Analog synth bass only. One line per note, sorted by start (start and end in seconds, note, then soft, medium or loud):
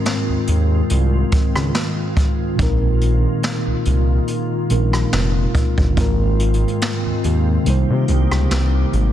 0.29 0.37 D#2 soft
0.48 0.82 D#2 medium
0.91 1.24 C2 medium
1.56 1.71 C#2 medium
2.59 3.27 A#1 loud
3.67 3.75 C2 medium
3.86 4.20 C2 medium
4.71 5.04 A#1 medium
5.13 5.47 F1 loud
5.78 5.93 G1 medium
5.97 6.65 G#1 loud
7.05 7.13 D#2 soft
7.24 7.58 D#2 loud
7.67 7.85 C2 loud
7.89 8.05 C3 loud
8.09 8.27 C2 loud
8.32 8.47 C#2 medium
8.51 8.85 C2 medium
8.93 9.11 G#1 loud